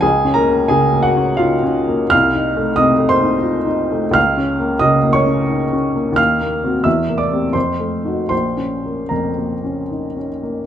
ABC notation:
X:1
M:3/4
L:1/8
Q:1/4=88
K:Bbm
V:1 name="Upright piano"
[Aa] [Bb] [Aa] [Gg] [Ff]2 | [ff']2 [ee'] [cc']3 | [ff']2 [ee'] [dd']3 | [ff']2 [=e=e'] [=d=d'] [cc']2 |
[cc']2 [Bb]3 z |]
V:2 name="Upright piano"
(3D,, D B, (3D, B, D (3E D B, | (3C,, E =A, (3C, A, E (3F E A, | (3D,, D B, (3D, B, D (3E D B, | (3E,, B, [CG] (3=E,, B, [C=G] (3F,, =A, [_E_G] |
(3B,,, D B, (3F,, B, D (3E D B, |]